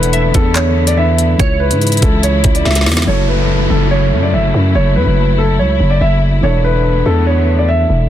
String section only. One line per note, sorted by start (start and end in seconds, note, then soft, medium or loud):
0.00 1.38 D3 medium
0.00 1.36 A3 medium
0.00 1.38 B3 medium
0.00 1.35 E4 medium
1.39 3.06 C#3 medium
1.39 3.06 E3 medium
1.39 3.06 G#3 medium
1.39 3.06 E4 medium
3.07 6.40 C#3 medium
3.07 6.40 F#3 medium
3.07 6.40 A3 medium
3.07 8.09 E4 medium
6.43 8.09 D3 medium
6.43 8.09 A3 medium
6.43 8.09 B3 medium